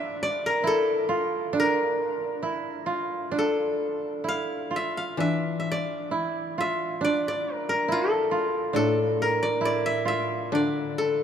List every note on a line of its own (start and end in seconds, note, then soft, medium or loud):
0.00 1.52 D4 medium
0.00 0.70 F4 medium
0.00 0.27 A#4 medium
0.00 0.22 D5 medium
0.00 1.29 E5 medium
0.23 1.83 D5 medium
0.46 0.73 A#4 medium
0.64 1.15 E4 medium
0.64 1.66 A4 medium
1.09 2.49 F4 medium
1.53 3.31 D4 medium
1.60 3.44 A#4 medium
2.43 2.92 E4 medium
2.86 4.30 F4 medium
3.31 5.18 D4 medium
3.38 5.29 A4 medium
4.24 4.77 E4 medium
4.28 4.82 F5 medium
4.71 6.17 F4 medium
4.76 5.03 E5 medium
4.97 5.26 F5 medium
5.17 7.89 E3 medium
5.17 7.00 D4 medium
5.17 5.59 E5 medium
5.60 6.60 E5 medium
5.72 7.04 D5 medium
6.11 6.64 E4 medium
6.58 7.94 F4 medium
6.58 8.10 E5 medium
7.01 8.73 D4 medium
7.01 7.28 D5 medium
7.28 7.54 D5 medium
7.54 7.69 A#4 medium
7.69 7.98 A#4 medium
7.88 8.37 E4 medium
7.88 8.76 A4 medium
8.31 9.67 F4 medium
8.73 10.53 A2 medium
8.73 10.52 D4 medium
8.73 9.28 A4 medium
9.22 11.04 A#4 medium
9.43 9.65 D5 medium
9.61 10.11 E4 medium
9.65 10.54 D5 medium
9.86 10.08 E5 medium
10.05 11.23 F4 medium
10.05 11.23 E5 medium
10.52 11.23 D3 medium
10.52 11.23 D4 medium
10.52 11.23 D5 medium
10.98 11.23 A4 medium